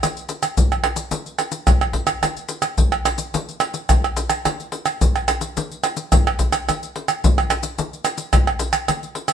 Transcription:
0.03 pandeiro medium
0.03 tamborim medium
0.03 maracas medium
0.03 surdo medium
0.17 pandeiro soft
0.17 maracas soft
0.29 pandeiro medium
0.29 maracas medium
0.43 pandeiro medium
0.43 tamborim medium
0.43 maracas medium
0.57 pandeiro medium
0.57 maracas medium
0.57 surdo loud
0.72 pandeiro soft
0.72 tamborim medium
0.72 maracas soft
0.84 pandeiro medium
0.84 tamborim medium
0.96 pandeiro medium
0.96 maracas medium
1.11 pandeiro medium
1.11 maracas medium
1.11 surdo medium
1.26 pandeiro soft
1.26 maracas soft
1.39 pandeiro medium
1.39 tamborim medium
1.39 maracas medium
1.52 pandeiro medium
1.52 maracas medium
1.67 pandeiro medium
1.67 tamborim medium
1.67 maracas medium
1.67 surdo loud
1.81 pandeiro soft
1.81 tamborim medium
1.81 maracas soft
1.93 pandeiro medium
1.93 surdo medium
2.07 pandeiro medium
2.07 tamborim medium
2.07 maracas medium
2.23 pandeiro medium
2.23 tamborim medium
2.23 maracas medium
2.23 surdo medium
2.37 pandeiro soft
2.37 maracas soft
2.49 pandeiro medium
2.49 maracas medium
2.62 pandeiro medium
2.62 tamborim medium
2.62 maracas medium
2.78 pandeiro medium
2.78 maracas medium
2.78 surdo medium
2.92 pandeiro soft
2.92 tamborim medium
2.92 maracas soft
3.05 pandeiro medium
3.05 tamborim medium
3.05 maracas medium
3.18 pandeiro medium
3.18 maracas medium
3.34 pandeiro medium
3.34 maracas medium
3.34 surdo medium
3.49 pandeiro soft
3.49 maracas soft
3.60 pandeiro medium
3.60 tamborim medium
3.60 maracas medium
3.74 pandeiro medium
3.74 maracas medium
3.89 pandeiro medium
3.89 tamborim medium
3.89 maracas medium
3.89 surdo loud
4.04 pandeiro soft
4.04 tamborim medium
4.04 maracas soft
4.17 pandeiro medium
4.17 maracas medium
4.30 pandeiro medium
4.30 tamborim medium
4.30 maracas medium
4.45 pandeiro medium
4.45 tamborim medium
4.45 maracas medium
4.45 surdo medium
4.60 pandeiro soft
4.60 maracas soft
4.72 pandeiro medium
4.86 pandeiro soft
4.86 tamborim medium
4.86 maracas medium
5.01 pandeiro medium
5.01 maracas medium
5.01 surdo medium
5.16 pandeiro soft
5.16 tamborim medium
5.16 maracas soft
5.28 pandeiro medium
5.28 tamborim medium
5.28 maracas medium
5.41 pandeiro medium
5.41 maracas medium
5.57 pandeiro medium
5.57 maracas medium
5.57 surdo medium
5.72 pandeiro soft
5.72 maracas soft
5.84 pandeiro medium
5.84 tamborim medium
5.84 maracas medium
5.97 pandeiro medium
5.97 maracas medium
6.12 pandeiro medium
6.12 tamborim medium
6.12 maracas medium
6.12 surdo loud
6.27 pandeiro soft
6.27 tamborim medium
6.27 maracas soft
6.39 pandeiro medium
6.39 maracas medium
6.39 surdo medium
6.52 pandeiro medium
6.52 tamborim medium
6.52 maracas medium
6.69 pandeiro medium
6.69 tamborim medium
6.69 maracas medium
6.69 surdo medium
6.83 pandeiro soft
6.83 maracas soft
6.96 pandeiro medium
7.08 pandeiro medium
7.08 tamborim medium
7.08 maracas medium
7.24 pandeiro medium
7.24 maracas medium
7.24 surdo loud
7.38 pandeiro soft
7.38 tamborim medium
7.38 maracas soft
7.50 pandeiro medium
7.50 tamborim medium
7.50 maracas medium
7.63 pandeiro medium
7.63 maracas medium
7.78 pandeiro medium
7.78 maracas medium
7.78 surdo medium
7.93 pandeiro soft
7.93 maracas soft
8.05 pandeiro medium
8.05 tamborim medium
8.05 maracas medium
8.18 pandeiro medium
8.18 maracas medium
8.33 pandeiro medium
8.33 tamborim medium
8.33 maracas medium
8.33 surdo loud
8.47 pandeiro soft
8.47 tamborim medium
8.47 maracas soft
8.59 pandeiro medium
8.59 maracas medium
8.73 pandeiro medium
8.73 tamborim medium
8.73 maracas medium
8.88 pandeiro medium
8.88 tamborim medium
8.88 maracas medium
8.88 surdo medium
9.03 pandeiro soft
9.03 maracas soft
9.15 pandeiro medium
9.28 pandeiro medium
9.28 tamborim medium
9.28 maracas medium

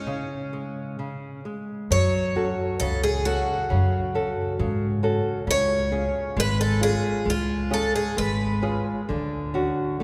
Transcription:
0.00 1.40 C#4 medium
0.07 0.98 C#3 medium
0.53 0.97 G#3 soft
0.99 1.43 C#3 soft
1.45 1.89 G#3 soft
1.90 2.49 F#2 medium
1.90 2.78 F#3 medium
1.90 2.79 C#5 medium
2.35 3.08 C#4 soft
2.35 3.08 F#4 soft
2.35 3.08 A4 soft
2.80 3.40 C#2 medium
2.80 3.68 C#3 medium
2.80 3.01 A4 medium
3.04 3.24 G#4 medium
3.25 3.97 C#4 soft
3.25 4.99 F#4 medium
3.25 3.98 F#4 soft
3.25 3.98 A4 medium
3.70 4.29 F#2 medium
3.70 4.56 C#3 medium
4.15 4.85 C#4 soft
4.15 4.86 F#4 soft
4.15 4.86 A4 soft
4.59 5.17 G#2 loud
4.59 5.45 C#3 medium
5.03 5.38 C#4 soft
5.03 5.38 F#4 soft
5.03 5.38 A4 medium
5.47 6.05 C#2 loud
5.47 6.34 C#3 medium
5.47 6.39 C#5 loud
5.91 6.63 C#4 medium
5.91 6.63 F4 soft
5.91 6.64 G#4 medium
6.36 6.95 G#1 loud
6.36 7.24 G#3 medium
6.36 6.59 B4 loud
6.61 6.83 A4 medium
6.81 7.53 C#4 medium
6.81 7.53 F4 soft
6.81 7.54 G#4 medium
6.81 7.29 G#4 medium
7.25 7.85 C#2 medium
7.25 8.14 G#3 medium
7.30 7.75 F4 medium
7.70 8.44 C#4 soft
7.70 8.44 F4 soft
7.70 8.45 G#4 medium
7.70 7.95 A4 medium
7.96 8.18 G#4 medium
8.17 8.78 G#1 medium
8.17 9.06 G#3 medium
8.17 8.83 B4 medium
8.62 8.99 C#4 soft
8.62 8.99 F4 soft
8.62 9.00 G#4 soft
9.09 9.69 D2 medium
9.09 9.98 D3 medium
9.54 10.03 C#4 soft
9.54 10.03 D4 soft
9.54 10.03 F#4 medium
10.00 10.03 A3 medium

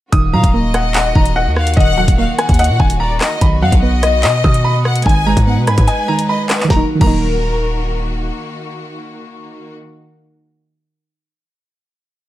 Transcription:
0.12 0.35 D#1 loud
0.12 1.14 D#3 medium
0.12 3.38 D#3 medium
0.12 3.38 A#3 medium
0.12 5.02 F#4 medium
0.12 0.30 D#6 medium
0.12 kick loud
0.12 closed hi-hat medium
0.33 0.43 A#2 loud
0.33 1.36 F#3 medium
0.33 0.53 F5 medium
0.33 0.72 A#5 medium
0.43 1.12 D#1 loud
0.43 kick medium
0.43 closed hi-hat medium
0.54 1.56 A#3 medium
0.54 1.52 D#5 medium
0.74 0.91 F#5 medium
0.74 cross-stick loud
0.74 closed hi-hat medium
0.94 1.98 D#5 medium
0.94 1.12 F#5 medium
0.94 clap loud
0.94 closed hi-hat medium
1.15 1.48 D#1 loud
1.15 1.76 D#3 medium
1.15 1.33 A#5 medium
1.15 kick loud
1.26 closed hi-hat medium
1.36 1.75 F#5 medium
1.46 1.75 D#2 loud
1.56 1.76 F5 medium
1.56 cross-stick medium
1.67 closed hi-hat medium
1.74 2.07 D#1 loud
1.74 2.79 D#3 medium
1.74 1.94 D#5 medium
1.74 2.16 F#5 loud
1.74 kick loud
1.74 closed hi-hat medium
1.80 closed hi-hat soft
1.98 3.00 F#3 medium
1.98 2.36 F#5 medium
2.08 2.28 D#1 loud
2.08 kick loud
2.08 closed hi-hat medium
2.18 3.21 A#3 medium
2.18 2.37 F5 medium
2.38 2.97 F#5 medium
2.38 2.56 G#5 medium
2.38 cross-stick loud
2.38 closed hi-hat medium
2.49 2.71 D#2 loud
2.49 kick medium
2.49 closed hi-hat medium
2.54 closed hi-hat medium
2.59 3.41 D#5 medium
2.59 2.76 F#5 medium
2.59 closed hi-hat medium
2.64 closed hi-hat medium
2.69 2.79 A#2 loud
2.80 3.19 D#1 loud
2.80 3.40 D#3 medium
2.80 2.97 G#5 medium
2.80 kick loud
2.90 closed hi-hat medium
3.00 3.20 D5 medium
3.00 3.39 A#5 medium
3.21 3.40 D#5 loud
3.21 cross-stick medium
3.21 clap loud
3.21 open hi-hat medium
3.41 3.63 B1 loud
3.41 4.43 D#3 medium
3.41 5.04 B3 medium
3.41 5.04 D#5 medium
3.41 3.59 B5 medium
3.41 kick loud
3.41 closed hi-hat medium
3.62 3.72 F#2 loud
3.62 4.65 F#3 medium
3.62 3.81 F5 medium
3.62 4.01 F#5 medium
3.72 4.25 B1 loud
3.72 kick loud
3.72 closed hi-hat medium
3.83 4.85 B3 medium
3.83 4.81 D#5 loud
4.03 4.20 D#5 medium
4.03 cross-stick loud
4.03 closed hi-hat medium
4.23 4.43 B2 loud
4.23 4.41 D#5 loud
4.23 5.06 D#5 medium
4.23 clap loud
4.23 closed hi-hat medium
4.44 5.03 B2 loud
4.44 5.05 D#3 medium
4.44 4.61 D#6 medium
4.44 kick loud
4.54 closed hi-hat medium
4.64 5.03 B5 medium
4.85 5.05 F#5 medium
4.85 cross-stick medium
4.95 closed hi-hat medium
5.02 5.35 G#1 loud
5.02 6.07 D#3 medium
5.02 6.68 G#3 medium
5.02 6.68 D#4 medium
5.02 6.68 B4 medium
5.02 5.45 G#5 loud
5.02 5.23 G#5 medium
5.02 kick loud
5.02 closed hi-hat medium
5.09 closed hi-hat soft
5.26 6.29 G#3 medium
5.26 5.65 A#5 medium
5.37 5.59 G#2 loud
5.37 kick loud
5.37 closed hi-hat medium
5.47 6.50 B3 medium
5.47 5.66 F#5 medium
5.57 5.69 B2 loud
5.67 5.77 G#2 loud
5.67 6.25 G#5 medium
5.67 5.85 B5 medium
5.67 cross-stick loud
5.67 closed hi-hat medium
5.78 5.88 G#2 loud
5.78 kick medium
5.78 closed hi-hat medium
5.88 6.70 D#5 medium
5.88 6.05 G#5 medium
5.88 closed hi-hat medium
6.08 6.63 D#3 medium
6.08 6.25 A#5 medium
6.19 closed hi-hat medium
6.29 6.49 D#5 medium
6.29 6.46 B5 medium
6.50 6.69 B4 medium
6.50 cross-stick medium
6.50 clap loud
6.50 closed hi-hat medium
6.60 clap medium
6.64 6.78 D#3 medium
6.68 6.82 D#1 loud
6.68 9.74 D#3 medium
6.68 6.81 F#3 medium
6.68 9.74 A#3 medium
6.68 9.74 F#4 medium
6.68 6.82 A#4 medium
6.68 6.82 A#5 medium
6.68 kick loud
6.68 snare medium
6.72 6.83 A#3 medium
6.76 6.85 D#4 medium
6.95 9.99 D#3 medium
6.99 8.31 D#1 loud
6.99 10.03 F#3 medium
6.99 7.89 A#4 medium
6.99 7.89 A#5 medium
6.99 kick loud
6.99 crash medium
7.03 10.07 A#3 medium
7.03 10.11 D#4 loud

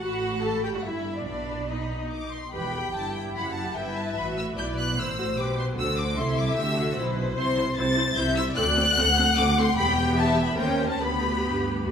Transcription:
0.02 0.80 A1 medium
0.02 0.80 A2 medium
0.02 0.41 F#4 medium
0.02 0.41 F#5 medium
0.02 0.40 B5 medium
0.42 0.63 A4 medium
0.42 0.63 A5 medium
0.42 0.83 B5 soft
0.63 0.67 G4 medium
0.63 0.73 G5 medium
0.73 0.77 F#4 soft
0.73 0.84 F#5 soft
0.83 1.25 G1 soft
0.83 1.25 G2 soft
0.83 1.15 E4 medium
0.83 1.16 E5 medium
0.83 1.24 B5 soft
1.15 1.25 D4 soft
1.15 1.23 D5 soft
1.25 2.33 B1 soft
1.25 2.33 B2 soft
1.25 1.68 D4 medium
1.25 1.67 D5 soft
1.25 1.68 B5 soft
1.69 2.33 D#4 soft
1.69 2.33 D#5 soft
1.69 2.11 B5 soft
2.11 2.31 D6 medium
2.32 2.54 C6 medium
2.53 2.92 E1 medium
2.53 2.93 E2 medium
2.53 2.74 G4 soft
2.53 2.73 B4 medium
2.53 3.32 G5 medium
2.53 2.94 B5 medium
2.75 3.76 G4 medium
2.94 3.35 G1 medium
2.94 3.35 G2 medium
2.94 3.76 E4 medium
2.94 3.15 A5 medium
3.15 3.23 G5 medium
3.36 3.75 F#1 medium
3.36 3.75 F#2 medium
3.36 3.76 F#5 medium
3.36 3.55 B5 medium
3.54 3.75 A5 medium
3.75 4.15 G1 medium
3.75 4.16 G2 medium
3.75 4.16 E4 medium
3.75 4.55 B4 medium
3.75 4.56 E5 medium
3.75 3.96 G5 medium
3.96 4.17 A5 medium
4.16 4.56 A1 medium
4.16 4.56 A2 medium
4.16 4.56 F#4 medium
4.16 4.25 B5 medium
4.37 4.45 E6 medium
4.56 4.97 B1 medium
4.56 4.97 B2 medium
4.56 4.96 E4 soft
4.56 4.96 B4 soft
4.56 4.98 D5 medium
4.56 4.66 G6 medium
4.79 4.98 F#6 medium
4.97 5.37 A1 medium
4.97 5.38 A2 medium
4.97 5.05 E4 medium
4.97 5.37 C5 medium
4.97 5.76 C5 medium
4.97 5.39 E6 medium
5.17 5.25 F#4 medium
5.38 5.77 B1 medium
5.38 5.77 B2 medium
5.38 5.77 G4 medium
5.38 5.77 B4 medium
5.38 5.58 D6 medium
5.59 5.66 C6 medium
5.77 6.17 D2 medium
5.77 6.17 D3 medium
5.77 6.16 F#4 medium
5.77 6.15 A4 medium
5.77 6.16 C5 medium
5.77 5.98 E6 medium
5.98 6.17 D6 medium
6.16 6.57 C2 medium
6.16 6.57 C3 medium
6.16 6.56 E4 medium
6.16 6.95 A4 medium
6.16 6.97 E5 medium
6.16 6.38 C6 medium
6.37 6.57 D6 medium
6.56 6.96 D2 medium
6.56 6.96 D3 medium
6.56 6.77 G4 medium
6.56 6.96 E6 medium
6.76 6.97 F#4 medium
6.96 7.36 B1 medium
6.96 7.36 B2 medium
6.96 7.36 E4 medium
6.96 7.37 B4 medium
6.96 8.17 C5 medium
7.37 7.73 C2 medium
7.37 7.73 C3 medium
7.37 7.45 E4 medium
7.37 7.45 C5 medium
7.37 7.75 C6 medium
7.57 7.65 E4 medium
7.57 7.65 C5 medium
7.77 8.12 C2 medium
7.77 8.13 C3 medium
7.77 7.86 E4 medium
7.77 7.86 C5 medium
7.77 8.16 A6 loud
7.97 8.05 E4 medium
7.97 8.05 C5 medium
8.16 8.52 C2 medium
8.16 8.52 C3 medium
8.16 8.25 E4 medium
8.16 8.25 C5 medium
8.16 8.57 E5 medium
8.16 8.37 G6 medium
8.36 8.44 E4 medium
8.36 8.45 C5 medium
8.36 8.44 E6 loud
8.56 8.92 D2 medium
8.56 8.64 C4 medium
8.56 8.64 A4 medium
8.56 8.96 D5 medium
8.56 9.35 F#6 loud
8.76 8.84 C4 medium
8.76 8.84 A4 medium
8.97 9.33 D2 medium
8.97 9.05 C4 medium
8.97 9.05 A4 medium
8.97 9.77 F#5 medium
9.17 9.25 C4 medium
9.17 9.25 A4 medium
9.37 9.73 D2 medium
9.37 9.46 C4 medium
9.37 9.45 A4 medium
9.37 9.57 D6 loud
9.57 9.65 C4 medium
9.57 9.65 A4 medium
9.57 9.78 C6 medium
9.76 10.56 E1 medium
9.76 10.56 E2 medium
9.76 10.55 B3 medium
9.76 10.55 G4 medium
9.76 10.17 G5 medium
9.76 9.97 B5 loud
9.98 10.18 G5 medium
10.17 10.58 E5 medium
10.17 10.39 A5 medium
10.39 10.46 G5 medium
10.46 10.60 B5 medium
10.58 11.00 D#2 medium
10.58 11.01 D#2 medium
10.58 11.02 C#4 medium
10.58 11.01 A#4 medium
10.58 11.00 C5 medium
10.58 10.87 G5 medium
10.89 11.02 A5 medium
11.00 11.84 D2 medium
11.00 11.39 D2 medium
11.00 11.84 B3 medium
11.00 11.86 G4 medium
11.00 11.92 B4 medium
11.00 11.86 B5 medium
11.44 11.83 G2 medium
11.86 11.92 D2 medium
11.86 11.92 F#2 medium
11.86 11.92 A3 soft
11.86 11.92 F#4 medium

